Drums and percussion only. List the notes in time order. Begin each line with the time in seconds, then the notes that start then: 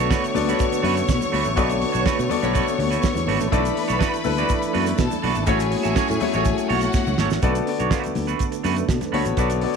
0.11 kick, snare, muted conga, shaker
0.24 closed hi-hat, shaker
0.35 open hi-hat, high conga, low conga, shaker
0.49 closed hi-hat, shaker
0.59 kick, closed hi-hat, muted conga, shaker
0.72 closed hi-hat, muted conga, shaker
0.84 open hi-hat, high conga
0.97 closed hi-hat, shaker
1.08 kick, snare, muted conga, high conga, shaker
1.22 closed hi-hat, muted conga, low conga, shaker
1.34 open hi-hat, high conga
1.45 closed hi-hat, shaker
1.57 kick, closed hi-hat, muted conga, shaker
1.70 closed hi-hat, muted conga, shaker
1.82 open hi-hat, high conga
1.95 closed hi-hat, shaker
2.06 kick, snare, muted conga, shaker
2.19 closed hi-hat, shaker
2.30 open hi-hat, high conga, low conga, shaker
2.43 closed hi-hat, shaker
2.55 kick, closed hi-hat, shaker
2.67 closed hi-hat, muted conga, shaker
2.79 open hi-hat, high conga
2.92 closed hi-hat, shaker
3.03 kick, snare, muted conga, high conga, shaker
3.15 snare, closed hi-hat, muted conga, low conga, shaker
3.27 open hi-hat, high conga
3.40 closed hi-hat, shaker
3.52 kick, closed hi-hat, shaker
3.64 closed hi-hat, muted conga, shaker
3.76 open hi-hat, high conga
3.89 closed hi-hat, shaker
4.00 kick, snare, muted conga, shaker
4.14 closed hi-hat, muted conga, shaker
4.24 open hi-hat, high conga, low conga, shaker
4.38 closed hi-hat, shaker
4.49 kick, closed hi-hat, muted conga, shaker
4.62 closed hi-hat, shaker
4.75 open hi-hat, high conga
4.86 closed hi-hat, shaker
4.98 kick, snare, high conga, shaker
5.11 closed hi-hat, low conga, shaker
5.24 open hi-hat, high conga
5.35 closed hi-hat, shaker
5.47 kick, closed hi-hat, muted conga, shaker
5.59 closed hi-hat, shaker
5.72 open hi-hat, high conga
5.85 closed hi-hat, shaker
5.96 kick, snare, shaker
6.08 closed hi-hat, muted conga, low conga, shaker
6.20 open hi-hat, high conga, low conga, shaker
6.33 closed hi-hat, shaker
6.45 kick, closed hi-hat, muted conga, shaker
6.58 closed hi-hat, muted conga, shaker
6.70 open hi-hat, high conga
6.81 closed hi-hat, shaker
6.93 kick, snare, high conga, shaker
7.07 muted conga, low conga, shaker
7.18 snare, high conga
7.30 snare, shaker
7.42 kick, closed hi-hat, muted conga, shaker
7.55 closed hi-hat, shaker
7.67 open hi-hat
7.80 closed hi-hat, shaker
7.91 kick, snare, muted conga, shaker
8.04 closed hi-hat, muted conga, low conga, shaker
8.15 open hi-hat, high conga, low conga, shaker
8.28 closed hi-hat, shaker
8.39 kick, closed hi-hat, shaker
8.52 closed hi-hat, shaker
8.64 open hi-hat, high conga, shaker
8.77 closed hi-hat, shaker
8.89 kick, snare, high conga, shaker
9.01 snare, closed hi-hat, muted conga, low conga, shaker
9.13 open hi-hat, high conga
9.25 closed hi-hat, shaker
9.37 kick, closed hi-hat, shaker
9.50 closed hi-hat, muted conga, shaker
9.61 open hi-hat